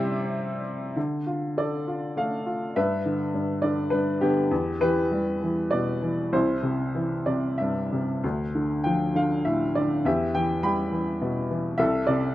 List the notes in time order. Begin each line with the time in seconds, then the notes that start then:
Already playing: C3 G3 C4 E4 G4 C5 D5 E5
0.96 D3
1.27 F4
1.58 A4 D5
1.88 F4
2.17 A3 F5
2.46 F4
2.76 G2 B4 E5
3.05 D3
3.34 G2
3.62 D3 D5
3.90 G2 B4
4.21 D3 B3 G4
4.51 E2
4.81 E3 G4 B4
5.12 G3
5.43 E3
5.71 B2 D5
6.02 E3
6.33 C2 E4 C5
6.63 C3
6.95 E3
7.26 C3 D5
7.58 G2 E5
7.92 C3
8.24 D2
8.55 D3
8.84 F3 G5
9.15 D3 F5
9.45 A2 E5
9.75 D3 D5
10.05 E2 G4 E5
10.34 E3 G5
10.63 G3 G5 B5
10.92 E3
11.21 B2
11.51 E3
11.78 C2 A4 E5
12.07 C3 D5